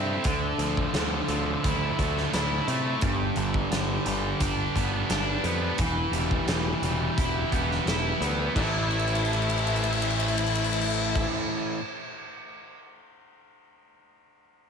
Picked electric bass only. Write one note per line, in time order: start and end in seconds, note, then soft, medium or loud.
0.00 0.16 G2 medium
0.25 0.51 D2 medium
0.58 0.85 D2 medium
0.93 1.20 D2 medium
1.28 1.55 D2 medium
1.64 1.90 D2 medium
1.99 2.25 D2 medium
2.34 2.60 D2 medium
2.68 2.94 C3 medium
3.02 3.28 G1 medium
3.36 3.63 G1 medium
3.70 3.97 G1 medium
4.06 4.32 G1 medium
4.40 4.66 G1 medium
4.75 5.02 G1 medium
5.10 5.36 G1 medium
5.44 5.70 F2 medium
5.78 6.05 E1 medium
6.11 6.38 E1 medium
6.46 6.73 E1 medium
6.82 7.09 E1 medium
7.18 7.44 E1 medium
7.52 7.78 E1 medium
7.86 8.12 E1 medium
8.20 8.47 D2 medium
8.56 11.25 A1 medium